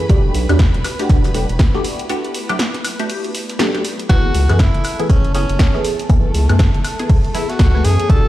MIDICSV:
0, 0, Header, 1, 7, 480
1, 0, Start_track
1, 0, Key_signature, 3, "minor"
1, 0, Tempo, 500000
1, 91, Time_signature, 4, 2, 24, 8
1, 7951, End_track
2, 0, Start_track
2, 0, Title_t, "Violin section"
2, 0, Program_c, 0, 48
2, 0, Note_on_c, 0, 71, 89
2, 0, Note_on_c, 0, 83, 87
2, 3931, Note_on_c, 0, 57, 91
2, 3931, Note_on_c, 0, 69, 87
2, 3944, Note_off_c, 0, 71, 0
2, 3944, Note_off_c, 0, 83, 0
2, 7951, Note_off_c, 0, 57, 0
2, 7951, Note_off_c, 0, 69, 0
2, 7951, End_track
3, 0, Start_track
3, 0, Title_t, "Tenor saxophone"
3, 0, Program_c, 1, 66
3, 3933, Note_on_c, 1, 66, 111
3, 4413, Note_on_c, 1, 64, 99
3, 4427, Note_off_c, 1, 66, 0
3, 4886, Note_off_c, 1, 64, 0
3, 4892, Note_on_c, 1, 61, 90
3, 5115, Note_off_c, 1, 61, 0
3, 5132, Note_on_c, 1, 61, 81
3, 5578, Note_off_c, 1, 61, 0
3, 7051, Note_on_c, 1, 64, 89
3, 7195, Note_on_c, 1, 66, 103
3, 7209, Note_off_c, 1, 64, 0
3, 7532, Note_on_c, 1, 68, 105
3, 7546, Note_off_c, 1, 66, 0
3, 7773, Note_on_c, 1, 69, 118
3, 7787, Note_off_c, 1, 68, 0
3, 7951, Note_off_c, 1, 69, 0
3, 7951, End_track
4, 0, Start_track
4, 0, Title_t, "Ambient pad"
4, 0, Program_c, 2, 92
4, 0, Note_on_c, 2, 57, 89
4, 0, Note_on_c, 2, 64, 91
4, 91, Note_on_c, 2, 59, 86
4, 1828, Note_on_c, 2, 74, 92
4, 3931, Note_off_c, 2, 74, 0
4, 5531, Note_on_c, 2, 73, 81
4, 7771, Note_off_c, 2, 73, 0
4, 7772, Note_off_c, 2, 57, 0
4, 7772, Note_off_c, 2, 64, 0
4, 7951, Note_off_c, 2, 59, 0
4, 7951, End_track
5, 0, Start_track
5, 0, Title_t, "Synth stab"
5, 0, Program_c, 3, 62
5, 90, Note_on_c, 3, 66, 84
5, 91, Note_on_c, 3, 57, 82
5, 91, Note_on_c, 3, 62, 80
5, 92, Note_on_c, 3, 67, 100
5, 440, Note_off_c, 3, 57, 0
5, 440, Note_off_c, 3, 62, 0
5, 440, Note_off_c, 3, 66, 0
5, 441, Note_off_c, 3, 67, 0
5, 474, Note_on_c, 3, 54, 86
5, 474, Note_on_c, 3, 57, 76
5, 475, Note_on_c, 3, 62, 80
5, 475, Note_on_c, 3, 67, 95
5, 549, Note_off_c, 3, 54, 0
5, 549, Note_off_c, 3, 57, 0
5, 550, Note_off_c, 3, 62, 0
5, 550, Note_off_c, 3, 67, 0
5, 954, Note_on_c, 3, 57, 70
5, 954, Note_on_c, 3, 62, 74
5, 954, Note_on_c, 3, 66, 78
5, 955, Note_on_c, 3, 67, 86
5, 1268, Note_off_c, 3, 57, 0
5, 1268, Note_off_c, 3, 62, 0
5, 1268, Note_off_c, 3, 66, 0
5, 1268, Note_off_c, 3, 67, 0
5, 1290, Note_on_c, 3, 54, 81
5, 1291, Note_on_c, 3, 57, 73
5, 1291, Note_on_c, 3, 62, 75
5, 1292, Note_on_c, 3, 67, 87
5, 1402, Note_off_c, 3, 54, 0
5, 1402, Note_off_c, 3, 57, 0
5, 1402, Note_off_c, 3, 62, 0
5, 1402, Note_off_c, 3, 67, 0
5, 1675, Note_on_c, 3, 57, 75
5, 1675, Note_on_c, 3, 62, 77
5, 1675, Note_on_c, 3, 66, 81
5, 1675, Note_on_c, 3, 67, 92
5, 1988, Note_off_c, 3, 57, 0
5, 1988, Note_off_c, 3, 62, 0
5, 1988, Note_off_c, 3, 66, 0
5, 1989, Note_off_c, 3, 67, 0
5, 2011, Note_on_c, 3, 57, 82
5, 2011, Note_on_c, 3, 62, 82
5, 2011, Note_on_c, 3, 66, 90
5, 2012, Note_on_c, 3, 67, 97
5, 2360, Note_off_c, 3, 57, 0
5, 2360, Note_off_c, 3, 62, 0
5, 2360, Note_off_c, 3, 66, 0
5, 2361, Note_off_c, 3, 67, 0
5, 2394, Note_on_c, 3, 54, 87
5, 2395, Note_on_c, 3, 57, 78
5, 2395, Note_on_c, 3, 62, 78
5, 2395, Note_on_c, 3, 67, 93
5, 2469, Note_off_c, 3, 54, 0
5, 2470, Note_off_c, 3, 57, 0
5, 2470, Note_off_c, 3, 62, 0
5, 2470, Note_off_c, 3, 67, 0
5, 2874, Note_on_c, 3, 66, 81
5, 2875, Note_on_c, 3, 57, 73
5, 2875, Note_on_c, 3, 62, 73
5, 2875, Note_on_c, 3, 67, 87
5, 3188, Note_off_c, 3, 57, 0
5, 3188, Note_off_c, 3, 62, 0
5, 3188, Note_off_c, 3, 66, 0
5, 3189, Note_off_c, 3, 67, 0
5, 3451, Note_on_c, 3, 54, 92
5, 3451, Note_on_c, 3, 57, 83
5, 3452, Note_on_c, 3, 62, 90
5, 3452, Note_on_c, 3, 67, 107
5, 3562, Note_off_c, 3, 54, 0
5, 3562, Note_off_c, 3, 57, 0
5, 3562, Note_off_c, 3, 62, 0
5, 3562, Note_off_c, 3, 67, 0
5, 3594, Note_on_c, 3, 54, 79
5, 3595, Note_on_c, 3, 57, 69
5, 3595, Note_on_c, 3, 62, 68
5, 3595, Note_on_c, 3, 67, 86
5, 3669, Note_off_c, 3, 54, 0
5, 3670, Note_off_c, 3, 57, 0
5, 3670, Note_off_c, 3, 62, 0
5, 3670, Note_off_c, 3, 67, 0
5, 3931, Note_on_c, 3, 52, 88
5, 3932, Note_on_c, 3, 57, 81
5, 3932, Note_on_c, 3, 59, 80
5, 3932, Note_on_c, 3, 68, 95
5, 4280, Note_off_c, 3, 52, 0
5, 4280, Note_off_c, 3, 57, 0
5, 4281, Note_off_c, 3, 59, 0
5, 4281, Note_off_c, 3, 68, 0
5, 4314, Note_on_c, 3, 52, 87
5, 4315, Note_on_c, 3, 57, 78
5, 4315, Note_on_c, 3, 59, 79
5, 4315, Note_on_c, 3, 68, 96
5, 4389, Note_off_c, 3, 52, 0
5, 4389, Note_off_c, 3, 57, 0
5, 4390, Note_off_c, 3, 59, 0
5, 4390, Note_off_c, 3, 68, 0
5, 4795, Note_on_c, 3, 52, 80
5, 4795, Note_on_c, 3, 57, 70
5, 4795, Note_on_c, 3, 59, 73
5, 4796, Note_on_c, 3, 68, 85
5, 5108, Note_off_c, 3, 52, 0
5, 5109, Note_off_c, 3, 57, 0
5, 5109, Note_off_c, 3, 59, 0
5, 5109, Note_off_c, 3, 68, 0
5, 5131, Note_on_c, 3, 52, 81
5, 5132, Note_on_c, 3, 57, 72
5, 5132, Note_on_c, 3, 59, 74
5, 5132, Note_on_c, 3, 68, 89
5, 5242, Note_off_c, 3, 52, 0
5, 5242, Note_off_c, 3, 57, 0
5, 5242, Note_off_c, 3, 59, 0
5, 5242, Note_off_c, 3, 68, 0
5, 5514, Note_on_c, 3, 52, 84
5, 5515, Note_on_c, 3, 57, 77
5, 5515, Note_on_c, 3, 59, 76
5, 5515, Note_on_c, 3, 68, 93
5, 5828, Note_off_c, 3, 52, 0
5, 5828, Note_off_c, 3, 57, 0
5, 5828, Note_off_c, 3, 59, 0
5, 5828, Note_off_c, 3, 68, 0
5, 5851, Note_on_c, 3, 52, 88
5, 5852, Note_on_c, 3, 57, 80
5, 5852, Note_on_c, 3, 59, 80
5, 5852, Note_on_c, 3, 68, 98
5, 6200, Note_off_c, 3, 52, 0
5, 6200, Note_off_c, 3, 57, 0
5, 6201, Note_off_c, 3, 59, 0
5, 6201, Note_off_c, 3, 68, 0
5, 6234, Note_on_c, 3, 52, 90
5, 6235, Note_on_c, 3, 57, 79
5, 6235, Note_on_c, 3, 59, 76
5, 6235, Note_on_c, 3, 68, 97
5, 6309, Note_off_c, 3, 52, 0
5, 6309, Note_off_c, 3, 57, 0
5, 6310, Note_off_c, 3, 59, 0
5, 6310, Note_off_c, 3, 68, 0
5, 6714, Note_on_c, 3, 52, 78
5, 6715, Note_on_c, 3, 57, 72
5, 6715, Note_on_c, 3, 59, 75
5, 6716, Note_on_c, 3, 68, 87
5, 7028, Note_off_c, 3, 52, 0
5, 7028, Note_off_c, 3, 57, 0
5, 7028, Note_off_c, 3, 59, 0
5, 7029, Note_off_c, 3, 68, 0
5, 7051, Note_on_c, 3, 52, 81
5, 7051, Note_on_c, 3, 57, 77
5, 7051, Note_on_c, 3, 59, 74
5, 7052, Note_on_c, 3, 68, 89
5, 7162, Note_off_c, 3, 52, 0
5, 7162, Note_off_c, 3, 57, 0
5, 7162, Note_off_c, 3, 59, 0
5, 7162, Note_off_c, 3, 68, 0
5, 7435, Note_on_c, 3, 52, 85
5, 7435, Note_on_c, 3, 57, 77
5, 7435, Note_on_c, 3, 59, 77
5, 7435, Note_on_c, 3, 68, 91
5, 7748, Note_off_c, 3, 52, 0
5, 7748, Note_off_c, 3, 57, 0
5, 7748, Note_off_c, 3, 59, 0
5, 7749, Note_off_c, 3, 68, 0
5, 7771, Note_on_c, 3, 66, 87
5, 7772, Note_on_c, 3, 57, 80
5, 7772, Note_on_c, 3, 62, 82
5, 7772, Note_on_c, 3, 67, 96
5, 7951, Note_off_c, 3, 57, 0
5, 7951, Note_off_c, 3, 62, 0
5, 7951, Note_off_c, 3, 66, 0
5, 7951, Note_off_c, 3, 67, 0
5, 7951, End_track
6, 0, Start_track
6, 0, Title_t, "Analog synth bass"
6, 0, Program_c, 4, 38
6, 91, Note_on_c, 4, 28, 101
6, 300, Note_off_c, 4, 28, 0
6, 331, Note_on_c, 4, 35, 97
6, 451, Note_off_c, 4, 35, 0
6, 473, Note_on_c, 4, 40, 96
6, 668, Note_off_c, 4, 40, 0
6, 713, Note_on_c, 4, 28, 83
6, 795, Note_off_c, 4, 28, 0
6, 1051, Note_on_c, 4, 28, 87
6, 1398, Note_off_c, 4, 28, 0
6, 1433, Note_on_c, 4, 28, 82
6, 1515, Note_off_c, 4, 28, 0
6, 3931, Note_on_c, 4, 30, 103
6, 4141, Note_off_c, 4, 30, 0
6, 4171, Note_on_c, 4, 37, 99
6, 4292, Note_off_c, 4, 37, 0
6, 4315, Note_on_c, 4, 42, 94
6, 4509, Note_off_c, 4, 42, 0
6, 4555, Note_on_c, 4, 30, 80
6, 4636, Note_off_c, 4, 30, 0
6, 4891, Note_on_c, 4, 30, 86
6, 5238, Note_off_c, 4, 30, 0
6, 5274, Note_on_c, 4, 30, 83
6, 5356, Note_off_c, 4, 30, 0
6, 5851, Note_on_c, 4, 30, 103
6, 6060, Note_off_c, 4, 30, 0
6, 6091, Note_on_c, 4, 37, 99
6, 6212, Note_off_c, 4, 37, 0
6, 6234, Note_on_c, 4, 42, 97
6, 6429, Note_off_c, 4, 42, 0
6, 6474, Note_on_c, 4, 30, 84
6, 6556, Note_off_c, 4, 30, 0
6, 7291, Note_on_c, 4, 37, 85
6, 7500, Note_off_c, 4, 37, 0
6, 7532, Note_on_c, 4, 42, 90
6, 7652, Note_off_c, 4, 42, 0
6, 7771, Note_on_c, 4, 28, 101
6, 7951, Note_off_c, 4, 28, 0
6, 7951, End_track
7, 0, Start_track
7, 0, Title_t, "Drums"
7, 89, Note_on_c, 9, 42, 76
7, 91, Note_off_c, 9, 42, 0
7, 91, Note_on_c, 9, 36, 120
7, 91, Note_on_c, 9, 42, 67
7, 187, Note_off_c, 9, 36, 0
7, 187, Note_off_c, 9, 42, 0
7, 328, Note_on_c, 9, 42, 69
7, 331, Note_on_c, 9, 46, 103
7, 424, Note_off_c, 9, 42, 0
7, 427, Note_off_c, 9, 46, 0
7, 474, Note_on_c, 9, 42, 55
7, 474, Note_on_c, 9, 76, 76
7, 477, Note_on_c, 9, 38, 53
7, 566, Note_off_c, 9, 42, 0
7, 566, Note_on_c, 9, 42, 88
7, 568, Note_off_c, 9, 38, 0
7, 568, Note_on_c, 9, 38, 118
7, 570, Note_off_c, 9, 76, 0
7, 571, Note_off_c, 9, 42, 0
7, 571, Note_on_c, 9, 36, 110
7, 571, Note_on_c, 9, 42, 65
7, 577, Note_off_c, 9, 38, 0
7, 577, Note_on_c, 9, 38, 113
7, 667, Note_off_c, 9, 36, 0
7, 667, Note_off_c, 9, 42, 0
7, 673, Note_off_c, 9, 38, 0
7, 714, Note_on_c, 9, 42, 38
7, 810, Note_off_c, 9, 42, 0
7, 811, Note_on_c, 9, 46, 95
7, 811, Note_on_c, 9, 76, 62
7, 816, Note_on_c, 9, 42, 79
7, 817, Note_on_c, 9, 38, 105
7, 907, Note_off_c, 9, 46, 0
7, 907, Note_off_c, 9, 76, 0
7, 912, Note_off_c, 9, 42, 0
7, 913, Note_off_c, 9, 38, 0
7, 951, Note_on_c, 9, 42, 73
7, 954, Note_off_c, 9, 42, 0
7, 954, Note_on_c, 9, 38, 104
7, 954, Note_on_c, 9, 42, 57
7, 1048, Note_off_c, 9, 42, 0
7, 1048, Note_on_c, 9, 42, 77
7, 1050, Note_off_c, 9, 38, 0
7, 1051, Note_off_c, 9, 42, 0
7, 1051, Note_on_c, 9, 36, 117
7, 1051, Note_on_c, 9, 42, 70
7, 1056, Note_on_c, 9, 38, 107
7, 1147, Note_off_c, 9, 36, 0
7, 1147, Note_off_c, 9, 42, 0
7, 1152, Note_off_c, 9, 38, 0
7, 1190, Note_on_c, 9, 42, 85
7, 1194, Note_off_c, 9, 42, 0
7, 1194, Note_on_c, 9, 42, 41
7, 1197, Note_on_c, 9, 38, 102
7, 1285, Note_off_c, 9, 38, 0
7, 1285, Note_on_c, 9, 38, 46
7, 1290, Note_off_c, 9, 42, 0
7, 1291, Note_on_c, 9, 46, 100
7, 1299, Note_on_c, 9, 42, 65
7, 1381, Note_off_c, 9, 38, 0
7, 1387, Note_off_c, 9, 46, 0
7, 1395, Note_off_c, 9, 42, 0
7, 1435, Note_on_c, 9, 42, 51
7, 1528, Note_on_c, 9, 38, 119
7, 1531, Note_off_c, 9, 42, 0
7, 1531, Note_on_c, 9, 36, 112
7, 1531, Note_on_c, 9, 42, 80
7, 1535, Note_off_c, 9, 38, 0
7, 1535, Note_on_c, 9, 38, 107
7, 1627, Note_off_c, 9, 36, 0
7, 1627, Note_off_c, 9, 42, 0
7, 1631, Note_off_c, 9, 38, 0
7, 1671, Note_on_c, 9, 38, 57
7, 1767, Note_off_c, 9, 38, 0
7, 1771, Note_on_c, 9, 46, 99
7, 1774, Note_on_c, 9, 42, 70
7, 1867, Note_off_c, 9, 46, 0
7, 1870, Note_off_c, 9, 42, 0
7, 1911, Note_on_c, 9, 42, 47
7, 1915, Note_off_c, 9, 42, 0
7, 1915, Note_on_c, 9, 42, 54
7, 2011, Note_off_c, 9, 42, 0
7, 2011, Note_on_c, 9, 42, 79
7, 2107, Note_off_c, 9, 42, 0
7, 2155, Note_on_c, 9, 42, 38
7, 2250, Note_off_c, 9, 42, 0
7, 2250, Note_on_c, 9, 42, 67
7, 2251, Note_on_c, 9, 46, 98
7, 2346, Note_off_c, 9, 42, 0
7, 2347, Note_off_c, 9, 46, 0
7, 2395, Note_on_c, 9, 42, 55
7, 2395, Note_on_c, 9, 76, 75
7, 2488, Note_on_c, 9, 38, 123
7, 2491, Note_off_c, 9, 42, 0
7, 2491, Note_off_c, 9, 76, 0
7, 2491, Note_on_c, 9, 42, 67
7, 2493, Note_off_c, 9, 42, 0
7, 2493, Note_on_c, 9, 42, 81
7, 2494, Note_off_c, 9, 38, 0
7, 2494, Note_on_c, 9, 38, 108
7, 2589, Note_off_c, 9, 42, 0
7, 2590, Note_off_c, 9, 38, 0
7, 2631, Note_on_c, 9, 38, 37
7, 2635, Note_on_c, 9, 42, 39
7, 2727, Note_off_c, 9, 38, 0
7, 2731, Note_off_c, 9, 42, 0
7, 2731, Note_on_c, 9, 46, 102
7, 2731, Note_on_c, 9, 76, 60
7, 2735, Note_on_c, 9, 42, 69
7, 2827, Note_off_c, 9, 46, 0
7, 2827, Note_off_c, 9, 76, 0
7, 2831, Note_off_c, 9, 42, 0
7, 2875, Note_on_c, 9, 42, 55
7, 2971, Note_off_c, 9, 42, 0
7, 2972, Note_on_c, 9, 42, 69
7, 2976, Note_on_c, 9, 46, 82
7, 3068, Note_off_c, 9, 42, 0
7, 3072, Note_off_c, 9, 46, 0
7, 3115, Note_on_c, 9, 42, 41
7, 3211, Note_off_c, 9, 42, 0
7, 3212, Note_on_c, 9, 46, 98
7, 3216, Note_on_c, 9, 42, 69
7, 3308, Note_off_c, 9, 46, 0
7, 3312, Note_off_c, 9, 42, 0
7, 3354, Note_on_c, 9, 38, 40
7, 3355, Note_on_c, 9, 42, 53
7, 3447, Note_off_c, 9, 38, 0
7, 3447, Note_on_c, 9, 38, 121
7, 3449, Note_off_c, 9, 38, 0
7, 3449, Note_on_c, 9, 38, 124
7, 3451, Note_off_c, 9, 42, 0
7, 3451, Note_on_c, 9, 42, 90
7, 3452, Note_off_c, 9, 42, 0
7, 3452, Note_on_c, 9, 42, 68
7, 3545, Note_off_c, 9, 38, 0
7, 3548, Note_off_c, 9, 42, 0
7, 3596, Note_on_c, 9, 42, 39
7, 3599, Note_on_c, 9, 38, 43
7, 3692, Note_off_c, 9, 42, 0
7, 3692, Note_on_c, 9, 46, 95
7, 3695, Note_off_c, 9, 38, 0
7, 3788, Note_off_c, 9, 46, 0
7, 3835, Note_on_c, 9, 42, 54
7, 3929, Note_off_c, 9, 42, 0
7, 3929, Note_on_c, 9, 42, 80
7, 3931, Note_on_c, 9, 36, 121
7, 3932, Note_off_c, 9, 42, 0
7, 3932, Note_on_c, 9, 42, 69
7, 4027, Note_off_c, 9, 36, 0
7, 4028, Note_off_c, 9, 42, 0
7, 4171, Note_on_c, 9, 46, 106
7, 4172, Note_on_c, 9, 42, 63
7, 4267, Note_off_c, 9, 46, 0
7, 4268, Note_off_c, 9, 42, 0
7, 4315, Note_on_c, 9, 42, 55
7, 4315, Note_on_c, 9, 76, 76
7, 4319, Note_on_c, 9, 38, 60
7, 4409, Note_off_c, 9, 38, 0
7, 4409, Note_on_c, 9, 38, 117
7, 4410, Note_off_c, 9, 42, 0
7, 4410, Note_on_c, 9, 42, 81
7, 4411, Note_off_c, 9, 76, 0
7, 4411, Note_on_c, 9, 36, 117
7, 4412, Note_off_c, 9, 38, 0
7, 4412, Note_off_c, 9, 42, 0
7, 4412, Note_on_c, 9, 38, 109
7, 4412, Note_on_c, 9, 42, 68
7, 4507, Note_off_c, 9, 36, 0
7, 4508, Note_off_c, 9, 38, 0
7, 4508, Note_off_c, 9, 42, 0
7, 4555, Note_on_c, 9, 42, 40
7, 4644, Note_off_c, 9, 42, 0
7, 4644, Note_on_c, 9, 42, 74
7, 4652, Note_on_c, 9, 46, 102
7, 4652, Note_on_c, 9, 76, 60
7, 4740, Note_off_c, 9, 42, 0
7, 4748, Note_off_c, 9, 46, 0
7, 4748, Note_off_c, 9, 76, 0
7, 4796, Note_on_c, 9, 42, 54
7, 4891, Note_on_c, 9, 36, 119
7, 4892, Note_off_c, 9, 42, 0
7, 4892, Note_on_c, 9, 42, 69
7, 4893, Note_off_c, 9, 42, 0
7, 4893, Note_on_c, 9, 42, 90
7, 4987, Note_off_c, 9, 36, 0
7, 4989, Note_off_c, 9, 42, 0
7, 5035, Note_on_c, 9, 42, 40
7, 5131, Note_off_c, 9, 42, 0
7, 5131, Note_on_c, 9, 38, 44
7, 5131, Note_on_c, 9, 46, 103
7, 5133, Note_on_c, 9, 42, 68
7, 5227, Note_off_c, 9, 38, 0
7, 5227, Note_off_c, 9, 46, 0
7, 5229, Note_off_c, 9, 42, 0
7, 5275, Note_on_c, 9, 42, 51
7, 5368, Note_off_c, 9, 42, 0
7, 5368, Note_on_c, 9, 42, 87
7, 5369, Note_on_c, 9, 38, 127
7, 5371, Note_on_c, 9, 36, 119
7, 5372, Note_off_c, 9, 42, 0
7, 5372, Note_on_c, 9, 42, 71
7, 5375, Note_off_c, 9, 38, 0
7, 5375, Note_on_c, 9, 38, 120
7, 5467, Note_off_c, 9, 36, 0
7, 5468, Note_off_c, 9, 42, 0
7, 5471, Note_off_c, 9, 38, 0
7, 5509, Note_on_c, 9, 38, 59
7, 5605, Note_off_c, 9, 38, 0
7, 5611, Note_on_c, 9, 46, 99
7, 5615, Note_on_c, 9, 42, 65
7, 5707, Note_off_c, 9, 46, 0
7, 5711, Note_off_c, 9, 42, 0
7, 5755, Note_on_c, 9, 42, 42
7, 5851, Note_off_c, 9, 42, 0
7, 5851, Note_on_c, 9, 36, 124
7, 5851, Note_on_c, 9, 42, 67
7, 5854, Note_off_c, 9, 42, 0
7, 5854, Note_on_c, 9, 42, 93
7, 5947, Note_off_c, 9, 36, 0
7, 5950, Note_off_c, 9, 42, 0
7, 6086, Note_on_c, 9, 42, 66
7, 6091, Note_on_c, 9, 46, 110
7, 6182, Note_off_c, 9, 42, 0
7, 6187, Note_off_c, 9, 46, 0
7, 6235, Note_on_c, 9, 42, 53
7, 6235, Note_on_c, 9, 76, 79
7, 6328, Note_on_c, 9, 38, 120
7, 6331, Note_off_c, 9, 42, 0
7, 6331, Note_off_c, 9, 76, 0
7, 6331, Note_on_c, 9, 36, 123
7, 6331, Note_on_c, 9, 42, 63
7, 6333, Note_off_c, 9, 38, 0
7, 6333, Note_on_c, 9, 38, 109
7, 6334, Note_off_c, 9, 42, 0
7, 6334, Note_on_c, 9, 42, 85
7, 6427, Note_off_c, 9, 36, 0
7, 6429, Note_off_c, 9, 38, 0
7, 6430, Note_off_c, 9, 42, 0
7, 6475, Note_on_c, 9, 42, 39
7, 6571, Note_off_c, 9, 42, 0
7, 6571, Note_on_c, 9, 46, 106
7, 6571, Note_on_c, 9, 76, 64
7, 6580, Note_on_c, 9, 42, 69
7, 6667, Note_off_c, 9, 46, 0
7, 6667, Note_off_c, 9, 76, 0
7, 6676, Note_off_c, 9, 42, 0
7, 6715, Note_on_c, 9, 42, 56
7, 6811, Note_off_c, 9, 42, 0
7, 6811, Note_on_c, 9, 36, 125
7, 6811, Note_on_c, 9, 42, 68
7, 6811, Note_on_c, 9, 46, 75
7, 6907, Note_off_c, 9, 36, 0
7, 6907, Note_off_c, 9, 42, 0
7, 6907, Note_off_c, 9, 46, 0
7, 6955, Note_on_c, 9, 42, 40
7, 7051, Note_off_c, 9, 42, 0
7, 7052, Note_on_c, 9, 46, 107
7, 7053, Note_on_c, 9, 42, 62
7, 7148, Note_off_c, 9, 46, 0
7, 7149, Note_off_c, 9, 42, 0
7, 7195, Note_on_c, 9, 42, 51
7, 7200, Note_on_c, 9, 38, 44
7, 7287, Note_off_c, 9, 38, 0
7, 7287, Note_on_c, 9, 38, 122
7, 7288, Note_off_c, 9, 42, 0
7, 7288, Note_on_c, 9, 42, 89
7, 7289, Note_off_c, 9, 38, 0
7, 7289, Note_on_c, 9, 38, 126
7, 7291, Note_on_c, 9, 36, 121
7, 7292, Note_off_c, 9, 42, 0
7, 7292, Note_on_c, 9, 42, 69
7, 7385, Note_off_c, 9, 38, 0
7, 7387, Note_off_c, 9, 36, 0
7, 7388, Note_off_c, 9, 42, 0
7, 7441, Note_on_c, 9, 38, 37
7, 7531, Note_off_c, 9, 38, 0
7, 7531, Note_on_c, 9, 38, 33
7, 7532, Note_on_c, 9, 46, 100
7, 7534, Note_on_c, 9, 42, 63
7, 7627, Note_off_c, 9, 38, 0
7, 7628, Note_off_c, 9, 46, 0
7, 7630, Note_off_c, 9, 42, 0
7, 7676, Note_on_c, 9, 42, 54
7, 7771, Note_off_c, 9, 42, 0
7, 7771, Note_on_c, 9, 36, 127
7, 7771, Note_on_c, 9, 42, 80
7, 7772, Note_off_c, 9, 42, 0
7, 7772, Note_on_c, 9, 42, 63
7, 7867, Note_off_c, 9, 36, 0
7, 7868, Note_off_c, 9, 42, 0
7, 7951, End_track
0, 0, End_of_file